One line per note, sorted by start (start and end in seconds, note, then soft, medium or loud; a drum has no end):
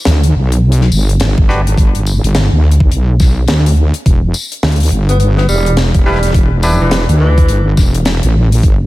0.05 0.33 D2 loud
0.05 snare loud
0.05 closed hi-hat medium
0.23 closed hi-hat medium
0.36 0.90 B1 medium
0.52 closed hi-hat medium
0.72 closed hi-hat medium
0.81 snare soft
0.92 1.35 G1 loud
0.92 tambourine medium
1.09 closed hi-hat medium
1.20 snare loud
1.20 closed hi-hat medium
1.38 1.76 G1 loud
1.38 kick loud
1.49 1.61 D4 medium
1.49 1.61 F#4 medium
1.49 1.61 G4 medium
1.49 1.61 B4 loud
1.49 snare soft
1.67 closed hi-hat medium
1.78 2.21 G1 loud
1.78 kick loud
1.78 closed hi-hat medium
1.95 closed hi-hat medium
2.07 tambourine medium
2.23 2.49 G1 loud
2.23 closed hi-hat medium
2.35 snare loud
2.35 closed hi-hat medium
2.52 2.90 D2 loud
2.72 closed hi-hat medium
2.80 kick loud
2.92 3.47 B1 loud
2.92 closed hi-hat medium
3.20 kick loud
3.20 snare soft
3.20 tambourine medium
3.48 3.92 D2 loud
3.48 snare loud
3.48 closed hi-hat medium
3.66 closed hi-hat medium
3.68 closed hi-hat soft
3.72 closed hi-hat soft
3.74 closed hi-hat soft
3.76 closed hi-hat soft
3.94 closed hi-hat medium
4.06 4.33 E1 loud
4.06 kick loud
4.06 closed hi-hat medium
4.34 tambourine medium
4.52 closed hi-hat medium
4.63 4.90 D2 loud
4.63 snare loud
4.63 closed hi-hat soft
4.67 closed hi-hat soft
4.72 closed hi-hat soft
4.76 closed hi-hat soft
4.80 closed hi-hat soft
4.83 closed hi-hat medium
4.86 closed hi-hat medium
4.88 closed hi-hat medium
4.91 5.47 G1 medium
4.91 closed hi-hat medium
5.09 5.16 B3 medium
5.09 closed hi-hat medium
5.20 5.31 B3 medium
5.20 closed hi-hat medium
5.37 5.47 B3 medium
5.37 snare soft
5.49 5.92 E1 loud
5.49 5.74 G3 medium
5.49 tambourine medium
5.66 closed hi-hat medium
5.77 snare loud
5.77 closed hi-hat medium
5.94 6.33 E1 medium
5.94 kick loud
5.94 closed hi-hat medium
6.05 6.31 G3 medium
6.05 6.19 D4 medium
6.05 6.18 E4 medium
6.05 6.18 G4 medium
6.05 6.19 B4 loud
6.05 snare soft
6.11 snare soft
6.15 snare soft
6.23 snare soft
6.23 closed hi-hat medium
6.25 snare soft
6.31 kick loud
6.31 snare soft
6.31 closed hi-hat medium
6.35 6.78 E1 loud
6.63 8.62 D4 medium
6.63 8.62 E4 medium
6.63 8.62 G4 medium
6.63 8.62 B4 medium
6.63 tambourine medium
6.80 7.06 E1 loud
6.80 7.03 E3 loud
6.91 snare loud
6.91 closed hi-hat medium
7.09 7.47 D2 loud
7.09 closed hi-hat medium
7.20 7.66 E3 loud
7.38 kick loud
7.38 closed hi-hat medium
7.48 7.76 G1 loud
7.48 closed hi-hat medium
7.77 8.21 E1 loud
7.77 kick loud
7.77 snare soft
7.77 tambourine medium
7.94 closed hi-hat medium
8.05 snare loud
8.05 closed hi-hat medium
8.23 8.62 A1 medium
8.23 closed hi-hat soft
8.52 closed hi-hat medium
8.54 closed hi-hat soft
8.58 closed hi-hat soft
8.60 closed hi-hat soft
8.62 8.86 G1 loud
8.62 kick loud
8.62 closed hi-hat soft
8.64 closed hi-hat medium